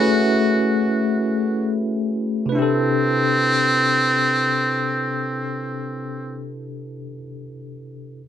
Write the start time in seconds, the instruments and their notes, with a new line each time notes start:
Already playing: tine electric piano A3 C#4 G#4, muted trumpet F#4
0.00 tine electric piano E4 F#4 B4
2.46 tine electric piano C3 B4
2.52 muted trumpet C4, tine electric piano D4 E4
2.59 tine electric piano G4 A4